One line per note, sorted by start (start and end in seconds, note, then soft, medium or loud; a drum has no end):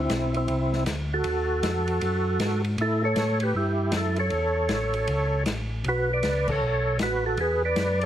0.00 0.33 C4 medium
0.00 0.36 E4 medium
0.10 0.47 B1 medium
0.10 snare medium
0.10 hi-hat pedal medium
0.10 ride medium
0.34 0.84 C4 medium
0.34 0.84 E4 medium
0.34 ride soft
0.48 0.85 C2 medium
0.48 ride medium
0.73 snare soft
0.86 1.23 D2 medium
0.86 snare medium
0.86 hi-hat pedal medium
0.86 ride medium
1.14 2.62 F#4 medium
1.14 2.62 A4 medium
1.24 1.62 D#2 medium
1.24 ride medium
1.63 2.00 F2 medium
1.63 snare medium
1.63 hi-hat pedal medium
1.63 ride medium
1.88 ride soft
2.01 2.39 F#2 medium
2.01 ride medium
2.39 2.77 G#2 medium
2.39 snare medium
2.39 hi-hat pedal medium
2.39 ride medium
2.64 ride soft
2.78 3.15 A2 medium
2.78 3.03 E4 medium
2.78 3.03 A4 medium
2.78 ride medium
3.04 3.39 A4 medium
3.04 3.43 C#5 loud
3.16 3.53 A2 medium
3.16 snare medium
3.16 hi-hat pedal medium
3.16 ride medium
3.40 3.55 G4 medium
3.40 3.55 B4 medium
3.40 ride medium
3.55 3.92 G2 medium
3.55 3.91 E4 medium
3.55 3.95 G4 medium
3.92 4.30 F#2 medium
3.92 snare medium
3.92 hi-hat pedal medium
3.92 ride medium
3.97 4.18 E4 medium
3.97 4.18 A4 medium
4.16 5.43 A4 medium
4.16 5.44 C#5 medium
4.16 ride soft
4.30 4.69 E2 medium
4.30 ride medium
4.69 5.07 A1 medium
4.69 snare medium
4.69 hi-hat pedal medium
4.69 ride medium
4.94 ride soft
5.07 5.45 C#2 medium
5.07 ride medium
5.46 5.83 A1 medium
5.46 snare medium
5.46 hi-hat pedal medium
5.46 ride medium
5.84 6.22 B1 medium
5.84 ride medium
5.88 6.10 F#4 medium
5.88 6.12 B4 medium
6.13 6.47 B4 medium
6.13 6.51 D5 medium
6.23 6.61 C#2 medium
6.23 snare medium
6.23 hi-hat pedal medium
6.23 ride medium
6.48 6.97 A4 medium
6.48 6.98 C#5 loud
6.48 kick medium
6.48 crash medium
6.62 6.99 B1 medium
6.99 7.37 A1 medium
6.99 7.24 F#4 medium
6.99 7.24 B4 medium
6.99 snare medium
6.99 hi-hat pedal medium
6.99 ride medium
7.26 7.38 F#4 medium
7.26 7.40 A4 medium
7.37 7.75 E2 medium
7.37 7.63 G#4 medium
7.37 7.63 B4 medium
7.37 ride medium
7.65 8.00 B4 medium
7.65 8.04 D5 loud
7.76 8.06 F#2 medium
7.76 snare medium
7.76 hi-hat pedal medium
7.76 ride medium
8.01 ride soft